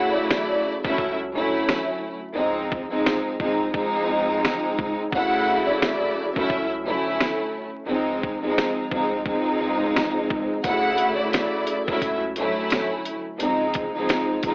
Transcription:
Already playing: string section D2 C#3 F#3 A3 E4, violin section F#5
0.12 violin section D5
0.31 violin section D5, snare
0.83 analog synth bass C#2, string section F#3 A3 C#4 E4, violin section E5, kick
0.98 kick
1.34 string section D2 F#3 A3 C#4 E4
1.53 analog synth bass B1
1.69 snare
2.34 string section C#2 F3 G#3 C4 D#4, analog synth bass C#2
2.72 kick
2.89 string section C#2 F3 G#3 C4 D#4
3.06 snare
3.39 string section C#2 F3 G#3 C4 D#4, kick
3.60 analog synth bass C2
3.72 string section C#2 F3 G#3 C4 D#4, kick
3.94 analog synth bass C#2
4.09 analog synth bass C#2
4.45 snare
4.79 analog synth bass C#2, kick
5.12 string section D2 C#3 F#3 A3 E4, analog synth bass D2, violin section F#5, kick
5.67 violin section D5
5.82 violin section D5, snare
6.35 analog synth bass C#2, string section F#3 A3 C#4 E4, violin section E5, kick
6.50 kick
6.85 string section D2 F#3 A3 C#4 E4
7.04 analog synth bass B1
7.20 snare
7.85 string section C#2 F3 G#3 C4 D#4, analog synth bass C#2
8.23 kick
8.41 string section C#2 F3 G#3 C4 D#4
8.58 snare
8.90 string section C#2 F3 G#3 C4 D#4, kick
9.11 analog synth bass C2
9.23 string section C#2 F3 G#3 C4 D#4, kick
9.46 analog synth bass C#2
9.61 analog synth bass C#2
9.96 snare
10.30 analog synth bass C#2, kick
10.64 string section D2 C#3 F#3 A3 E4, analog synth bass D2, violin section F#5, kick, closed hi-hat
10.98 closed hi-hat
11.15 violin section D5
11.33 violin section D5, snare, closed hi-hat
11.67 closed hi-hat
11.87 analog synth bass C#2, string section F#3 A3 C#4 E4, violin section E5, kick
12.02 kick, closed hi-hat
12.36 string section D2 F#3 A3 C#4 E4, closed hi-hat
12.56 analog synth bass B1
12.70 snare, closed hi-hat
13.05 closed hi-hat
13.37 string section C#2 F3 G#3 C4 D#4, analog synth bass C#2, closed hi-hat
13.74 kick, closed hi-hat
13.93 string section C#2 F3 G#3 C4 D#4
14.09 snare, closed hi-hat
14.42 string section C#2 F3 G#3 C4 D#4, kick, closed hi-hat

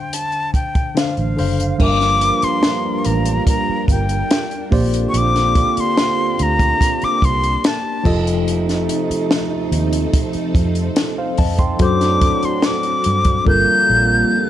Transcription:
Already playing: tine electric piano D3 D4 C5 F5, flute G5
0.13 flute A5, closed hi-hat
0.32 closed hi-hat
0.54 flute G5, kick, closed hi-hat
0.75 kick, closed hi-hat
0.95 tine electric piano D3 D4 C5 F5, flute F5, snare, closed hi-hat
1.17 fingered electric bass A1, flute F5, closed hi-hat
1.36 fingered electric bass F#1, tine electric piano D3 D4 C5 F5, open hi-hat
1.60 closed hi-hat
1.78 fingered electric bass G1, trombone section G2 F3 A#3, tine electric piano G3 D4 A#4 E5, string machine G3 D4 F4 A#4, flute D6, kick, crash
1.88 tine electric piano F5
2.01 snare, closed hi-hat
2.21 closed hi-hat
2.42 flute C6, muted fingered electric bass stroke, closed hi-hat
2.63 snare, closed hi-hat
2.99 flute C6
3.05 fingered electric bass A1, flute A#5, closed hi-hat
3.26 closed hi-hat
3.47 flute A#5, kick, closed hi-hat
3.69 muted fingered electric bass stroke
3.88 fingered electric bass G1, flute G5, kick, closed hi-hat
4.09 closed hi-hat
4.31 snare, closed hi-hat
4.51 closed hi-hat
4.71 fingered electric bass A#1, trombone section D3 C4 F4, tine electric piano A#3 G4 C5 D5, string machine A#3 G4, kick, open hi-hat
4.94 closed hi-hat
5.09 flute C#6
5.14 fingered electric bass A#1, flute D6, closed hi-hat
5.36 snare, closed hi-hat
5.55 kick, closed hi-hat
5.77 flute C6, muted fingered electric bass stroke, closed hi-hat
5.98 snare, closed hi-hat
6.39 fingered electric bass D2, flute A#5, closed hi-hat
6.59 kick, closed hi-hat
6.81 kick, closed hi-hat
7.02 flute D6, muted fingered electric bass stroke, closed hi-hat
7.22 fingered electric bass C2, flute C6, kick, closed hi-hat
7.44 closed hi-hat
7.64 flute A5, snare, closed hi-hat
8.04 fingered electric bass F1, trombone section C3 A3 D#4, tine electric piano F3 F4 A4 D#5, string machine F3 C4 D#4 A4, kick, crash
8.27 closed hi-hat
8.48 closed hi-hat
8.69 snare, closed hi-hat
8.89 closed hi-hat
9.10 muted fingered electric bass stroke, closed hi-hat
9.31 snare, closed hi-hat
9.72 fingered electric bass D#2, closed hi-hat
9.93 closed hi-hat
10.14 kick, closed hi-hat
10.33 muted fingered electric bass stroke, closed hi-hat
10.55 fingered electric bass F2, kick, closed hi-hat
10.75 closed hi-hat
10.96 snare, closed hi-hat
11.18 tine electric piano C5 F5
11.38 fingered electric bass F2, tine electric piano D#5 A5, kick, open hi-hat
11.59 tine electric piano G5 C6, kick, closed hi-hat
11.78 fingered electric bass F#2, trombone section A2 F#3 D4, tine electric piano F#3 F#4 A4 C5, string machine D4 F#4, kick, closed hi-hat
11.83 flute D6
12.01 snare, closed hi-hat
12.22 kick, closed hi-hat
12.43 flute C6, muted fingered electric bass stroke, closed hi-hat
12.62 flute D6, snare, closed hi-hat
12.83 closed hi-hat
13.04 fingered electric bass G2, closed hi-hat
13.25 kick, closed hi-hat
13.45 fingered electric bass G1, trombone section F2 D3 A#3, tine electric piano G3 F4 A4 A#4, string machine G3 A#3 F4 A5, flute G6, kick
13.69 muted fingered electric bass stroke
13.90 fingered electric bass A#1

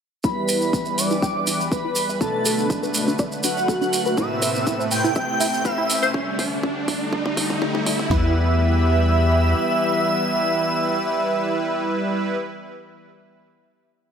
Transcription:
0.24 sub bass E2, analog synth pad E3 G3 B4, supersaw synth G3 E4 B4, synth arpeggio sound E4, analog synth lead B4, digital synth lead B5, kick, riser, maracas
0.48 synth arpeggio sound B4, open hi-hat, maracas
0.61 maracas
0.73 synth arpeggio sound E4, kick, maracas
0.85 synth arpeggio sound E5, maracas
0.98 supersaw synth G3 E4 B4, analog synth lead D5, digital synth lead D6, open hi-hat, maracas
1.10 synth arpeggio sound E4, maracas
1.22 synth arpeggio sound G5, kick, maracas
1.47 synth arpeggio sound E4, open hi-hat, maracas
1.61 maracas
1.72 analog synth lead B4, digital synth lead B5, kick, maracas
1.85 synth arpeggio sound E4
1.95 open hi-hat, maracas
2.09 synth arpeggio sound E5, maracas
2.21 sub bass B1, supersaw synth B2 A3 D4 B4, analog synth pad D3 A3, synth arpeggio sound D4, analog synth lead A4, digital synth lead A5, kick, maracas
2.45 synth arpeggio sound A4, open hi-hat, maracas
2.58 maracas
2.70 synth arpeggio sound D4, kick, maracas
2.83 synth arpeggio sound B4, maracas
2.94 supersaw synth B2 A3 D4 B4, open hi-hat, maracas
3.08 synth arpeggio sound D4, maracas
3.19 synth arpeggio sound D5, kick, maracas
3.32 maracas
3.43 synth arpeggio sound D4, analog synth lead F#4, digital synth lead F#5, open hi-hat, maracas
3.57 maracas
3.68 synth arpeggio sound A4, kick, maracas
3.81 synth arpeggio sound D4, maracas
3.93 open hi-hat, maracas
4.06 synth arpeggio sound B4, maracas
4.17 sub bass A1, supersaw synth A2 A3 C4 B4, analog synth pad C3, synth arpeggio sound E4, analog synth lead E5, digital synth lead E6, kick, maracas
4.42 synth arpeggio sound B4, open hi-hat, maracas
4.55 maracas
4.67 synth arpeggio sound E4, kick, maracas
4.80 synth arpeggio sound C5, maracas
4.91 supersaw synth A2 A3 C4 B4, analog synth lead G5, digital synth lead G6, open hi-hat, maracas
5.04 synth arpeggio sound E4, maracas
5.15 synth arpeggio sound E5, kick, maracas
5.40 synth arpeggio sound E4, open hi-hat, maracas
5.54 maracas
5.65 synth arpeggio sound B4, analog synth lead E5, digital synth lead E6, kick, maracas
5.78 synth arpeggio sound E4
5.90 open hi-hat, maracas
6.03 synth arpeggio sound C5, maracas
6.14 sub bass D2, analog synth pad D3 G3, kick
6.39 kick, open hi-hat
6.63 kick
6.88 kick, open hi-hat
7.13 kick
7.26 kick
7.37 kick, open hi-hat
7.50 kick
7.62 kick
7.75 kick
7.86 kick, open hi-hat
7.99 kick
8.11 sub bass E2, analog synth pad E3 B3 G4 E5 B5, supersaw synth G3 E4 B4, synth arpeggio sound E4, analog synth lead E5, digital synth lead E6, kick, snare

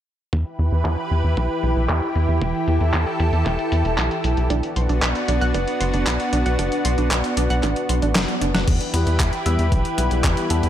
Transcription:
0.33 analog synth bass E2, analog synth pad E3 E4 G4 B4, kick, closed hi-hat
0.46 closed hi-hat
0.59 analog synth bass E2, closed hi-hat
0.72 analog synth bass E2, closed hi-hat
0.85 analog synth bass E2, kick, clap
0.98 closed hi-hat
1.11 analog synth bass E2, closed hi-hat
1.24 analog synth bass E2, closed hi-hat
1.37 analog synth bass B1, kick, closed hi-hat
1.50 closed hi-hat
1.63 analog synth bass B1, closed hi-hat
1.76 analog synth bass B1, closed hi-hat
1.89 analog synth bass E2, kick, clap, closed hi-hat
2.02 closed hi-hat
2.15 analog synth bass E2, closed hi-hat
2.29 analog synth bass E2, closed hi-hat
2.42 analog synth bass E1, analog synth pad A4, kick, closed hi-hat
2.55 closed hi-hat
2.68 analog synth bass E2, closed hi-hat
2.81 analog synth bass E2, closed hi-hat
2.94 analog synth bass E2, kick, clap, closed hi-hat
3.07 closed hi-hat
3.20 analog synth bass E2, closed hi-hat
3.33 analog synth bass E2, closed hi-hat
3.46 analog synth bass E1, kick, clap, closed hi-hat
3.59 closed hi-hat
3.72 analog synth bass E2, closed hi-hat
3.85 analog synth bass E1, closed hi-hat
3.98 analog synth bass B1, kick, clap, closed hi-hat
4.11 closed hi-hat
4.24 analog synth bass B1, closed hi-hat
4.37 analog synth bass B1, closed hi-hat
4.50 analog synth bass B1, analog synth pad B3 D4 F#4, synth arpeggio sound D4, kick, closed hi-hat
4.63 closed hi-hat
4.76 analog synth bass B1, synth arpeggio sound C6, closed hi-hat
4.89 analog synth bass B1, synth arpeggio sound D4, closed hi-hat
5.02 analog synth bass B1, synth arpeggio sound B5, kick, clap, closed hi-hat
5.15 closed hi-hat
5.28 analog synth bass B1, synth arpeggio sound D4, closed hi-hat
5.41 analog synth bass B1, synth arpeggio sound F#5, closed hi-hat
5.54 analog synth bass F#1, synth arpeggio sound D4, kick, closed hi-hat
5.68 closed hi-hat
5.81 analog synth bass F#1, synth arpeggio sound C6, closed hi-hat
5.94 analog synth bass F#1, synth arpeggio sound D4, closed hi-hat
6.07 analog synth bass B1, synth arpeggio sound B5, kick, clap, closed hi-hat
6.20 closed hi-hat
6.33 analog synth bass B1, synth arpeggio sound D4, closed hi-hat
6.46 analog synth bass B1, synth arpeggio sound F#5, closed hi-hat
6.59 analog synth bass F#1, synth arpeggio sound D4, kick, closed hi-hat
6.72 closed hi-hat
6.85 analog synth bass B1, synth arpeggio sound C6, closed hi-hat
6.98 analog synth bass B1, synth arpeggio sound D4, closed hi-hat
7.11 analog synth bass B1, synth arpeggio sound B5, kick, clap, closed hi-hat
7.24 closed hi-hat
7.37 analog synth bass B1, synth arpeggio sound D4, closed hi-hat
7.50 analog synth bass B1, synth arpeggio sound F#5, closed hi-hat
7.63 analog synth bass A1, synth arpeggio sound D4, kick, clap, closed hi-hat
7.76 closed hi-hat
7.89 analog synth bass B1, synth arpeggio sound C6, closed hi-hat
8.02 analog synth bass A1, synth arpeggio sound D4, closed hi-hat
8.15 analog synth bass F#1, synth arpeggio sound B5, kick, snare, clap, closed hi-hat
8.28 closed hi-hat
8.41 analog synth bass F#1, synth arpeggio sound D4, closed hi-hat
8.55 analog synth bass F#1, synth arpeggio sound F#5, snare, closed hi-hat
8.68 analog synth bass E2, analog synth pad E3 E4 G4 B4, kick, closed hi-hat, crash
8.81 closed hi-hat
8.94 analog synth bass E2, tine electric piano G3 B3 E4 B4, closed hi-hat
9.07 analog synth bass E2, closed hi-hat
9.20 analog synth bass E2, kick, clap, closed hi-hat
9.33 closed hi-hat
9.46 analog synth bass E2, tine electric piano G3 B3 E4 E5, closed hi-hat
9.59 analog synth bass E2, closed hi-hat
9.72 analog synth bass B1, kick, closed hi-hat
9.85 closed hi-hat
9.98 analog synth bass B1, tine electric piano G3 B3 E4 B4, closed hi-hat
10.11 analog synth bass B1, closed hi-hat
10.24 analog synth bass E2, kick, clap, closed hi-hat
10.37 closed hi-hat
10.50 analog synth bass E2, tine electric piano G3 B3 E4 A4, closed hi-hat
10.63 analog synth bass E2, closed hi-hat

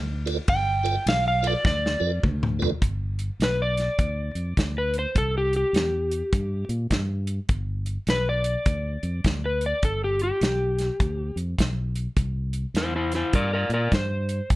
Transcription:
Already playing: fingered electric bass D2
0.26 tonewheel organ F4 A4 B4 D5, ride
0.48 fingered electric bass G1, electric slide guitar G5, kick, ride
0.83 tonewheel organ F4 A4 B4 D5, ride
1.06 fingered electric bass B1, electric slide guitar F5, snare, ride
1.28 electric slide guitar F5
1.42 tonewheel organ F4 A4 B4 D5, ride
1.47 electric slide guitar D5
1.64 fingered electric bass D2, electric slide guitar D5, kick, snare
1.86 snare
2.00 fingered electric bass F2, tonewheel organ F4 A4 B4 D5
2.23 fingered electric bass D2, kick, mid tom
2.43 mid tom
2.59 tonewheel organ F4 A4 B4 D5, floor tom
2.81 fingered electric bass G1, kick, closed hi-hat
3.19 closed hi-hat
3.40 fingered electric bass B1, electric slide guitar B4, snare, closed hi-hat
3.62 electric slide guitar D5
3.77 snare, closed hi-hat
3.98 fingered electric bass D2, kick, closed hi-hat
4.35 fingered electric bass F2, closed hi-hat
4.57 fingered electric bass D2, kick, snare, closed hi-hat
4.78 electric slide guitar B4
4.94 closed hi-hat
4.99 electric slide guitar C5
5.15 fingered electric bass C2, electric slide guitar A4, kick, closed hi-hat
5.38 electric slide guitar G4
5.53 electric slide guitar G4, closed hi-hat
5.73 fingered electric bass E2, snare, closed hi-hat
6.11 closed hi-hat
6.33 fingered electric bass G2, kick, closed hi-hat
6.69 fingered electric bass A#2, closed hi-hat
6.90 fingered electric bass G2, kick, snare, closed hi-hat
7.27 closed hi-hat
7.49 fingered electric bass G1, kick, closed hi-hat
7.86 closed hi-hat
8.07 fingered electric bass B1, electric slide guitar B4, snare, closed hi-hat
8.29 electric slide guitar D5
8.44 closed hi-hat
8.66 fingered electric bass D2, kick, closed hi-hat
9.03 fingered electric bass F2, closed hi-hat
9.24 fingered electric bass D2, kick, snare, closed hi-hat
9.46 electric slide guitar B4
9.61 closed hi-hat
9.66 electric slide guitar D5
9.82 fingered electric bass G1, electric slide guitar A4, kick, closed hi-hat
10.04 electric slide guitar G4
10.19 closed hi-hat
10.23 electric slide guitar G4
10.41 fingered electric bass B1, snare, closed hi-hat
10.78 snare, closed hi-hat
11.00 fingered electric bass D2, kick, closed hi-hat
11.36 fingered electric bass F2, closed hi-hat
11.59 fingered electric bass B1, kick, snare, closed hi-hat
11.96 closed hi-hat
12.16 fingered electric bass C2, kick, closed hi-hat
12.53 closed hi-hat
12.74 fingered electric bass E2, electric slide guitar E4 C5, snare, closed hi-hat
12.96 electric slide guitar E4 C5
13.12 electric slide guitar E4, snare, closed hi-hat
13.16 electric slide guitar C5
13.33 fingered electric bass G2, electric slide guitar A#4 D5, kick, closed hi-hat
13.54 electric slide guitar A#4 D5
13.69 fingered electric bass A#2, closed hi-hat
13.74 electric slide guitar A#4 D5
13.92 fingered electric bass G2, electric slide guitar C5, kick, snare, closed hi-hat
14.29 closed hi-hat
14.50 fingered electric bass C2, kick, closed hi-hat

